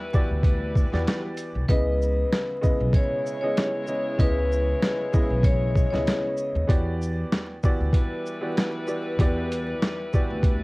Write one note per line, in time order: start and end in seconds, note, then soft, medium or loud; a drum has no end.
0.00 1.34 G3 medium
0.00 1.34 E4 medium
0.00 1.34 B4 loud
0.13 0.86 E3 medium
0.13 0.86 B3 medium
0.13 0.86 F#4 medium
0.13 0.86 G4 medium
0.13 0.86 D5 loud
0.13 kick loud
0.13 shaker medium
0.30 0.83 D2 medium
0.43 kick loud
0.43 closed hi-hat medium
0.75 kick medium
0.75 shaker medium
0.92 1.05 E2 medium
0.92 1.63 E3 medium
0.92 1.63 B3 medium
0.92 1.64 F#4 medium
0.92 1.64 G4 medium
0.92 1.64 D5 loud
0.92 snare soft
1.07 snare loud
1.07 closed hi-hat medium
1.37 closed hi-hat medium
1.37 shaker medium
1.55 1.67 C2 medium
1.69 2.22 C#2 loud
1.69 2.56 C#3 loud
1.69 2.56 G#3 medium
1.69 2.56 B3 medium
1.69 2.57 E4 medium
1.69 2.90 B4 loud
1.69 2.57 D#5 loud
1.69 kick loud
1.69 closed hi-hat loud
2.02 shaker medium
2.33 snare loud
2.33 closed hi-hat medium
2.61 3.35 C#3 loud
2.61 3.35 G#3 medium
2.61 3.35 B3 medium
2.61 3.35 E4 medium
2.61 3.36 D#5 loud
2.61 kick loud
2.61 shaker medium
2.81 2.92 B1 medium
2.93 6.34 G#3 medium
2.93 6.34 E4 medium
2.93 6.34 C#5 loud
2.93 3.40 C#5 medium
2.93 kick loud
2.93 closed hi-hat medium
3.26 shaker medium
3.41 3.84 C#3 medium
3.41 3.85 G#3 medium
3.41 3.85 B3 medium
3.41 3.85 E4 medium
3.41 4.14 C#5 medium
3.41 3.85 D#5 loud
3.57 snare loud
3.57 closed hi-hat medium
3.87 4.16 C#3 medium
3.87 4.16 G#3 medium
3.87 4.17 B3 medium
3.87 4.17 E4 medium
3.87 4.17 D#5 medium
3.87 shaker medium
4.17 4.72 C#2 loud
4.17 5.05 C#3 medium
4.17 5.05 G#3 medium
4.17 5.06 B3 medium
4.17 5.06 E4 medium
4.17 5.40 B4 loud
4.17 5.06 D#5 loud
4.17 kick loud
4.17 closed hi-hat medium
4.52 shaker medium
4.82 snare loud
4.82 closed hi-hat medium
5.12 5.85 C#3 medium
5.12 5.85 G#3 medium
5.12 5.86 B3 medium
5.12 5.86 E4 medium
5.12 5.86 D#5 loud
5.12 kick loud
5.12 shaker medium
5.30 5.83 B1 medium
5.43 5.89 C#5 medium
5.43 kick loud
5.43 closed hi-hat medium
5.75 kick medium
5.75 shaker medium
5.90 6.05 C#2 loud
5.90 6.63 C#3 medium
5.90 6.63 G#3 medium
5.90 6.64 B3 medium
5.90 6.64 E4 medium
5.90 6.64 C#5 medium
5.90 6.64 D#5 loud
5.90 snare soft
6.07 snare loud
6.07 closed hi-hat medium
6.37 shaker medium
6.55 6.67 D#2 loud
6.67 7.22 E2 loud
6.67 7.55 E3 medium
6.67 7.55 B3 medium
6.67 7.55 F#4 medium
6.67 7.56 G4 medium
6.67 7.56 D5 loud
6.67 kick loud
6.67 closed hi-hat loud
7.02 shaker medium
7.32 snare loud
7.32 closed hi-hat medium
7.63 8.36 E3 loud
7.63 8.36 B3 medium
7.63 8.36 F#4 medium
7.63 8.36 G4 medium
7.63 8.37 D5 loud
7.63 kick loud
7.63 shaker medium
7.80 7.92 D2 medium
7.93 10.63 G3 medium
7.93 10.63 E4 medium
7.93 10.63 B4 loud
7.93 kick loud
7.93 closed hi-hat medium
8.26 shaker medium
8.40 8.84 E3 loud
8.40 8.84 B3 medium
8.40 8.84 F#4 medium
8.40 8.84 G4 medium
8.40 8.84 D5 medium
8.57 snare loud
8.57 closed hi-hat medium
8.87 9.16 E3 medium
8.87 9.16 B3 medium
8.87 9.17 F#4 medium
8.87 9.17 G4 medium
8.87 9.17 D5 medium
8.87 shaker medium
9.19 9.72 E2 loud
9.19 10.06 E3 loud
9.19 10.06 B3 medium
9.19 10.07 F#4 medium
9.19 10.07 G4 medium
9.19 10.07 D5 loud
9.19 kick loud
9.19 closed hi-hat loud
9.52 closed hi-hat medium
9.52 shaker medium
9.82 snare loud
9.82 closed hi-hat medium
10.13 10.63 E3 medium
10.13 10.63 B3 medium
10.13 10.63 F#4 medium
10.13 10.63 G4 medium
10.13 10.63 D5 loud
10.13 kick loud
10.13 shaker medium
10.30 10.63 D2 medium
10.43 kick loud
10.43 closed hi-hat medium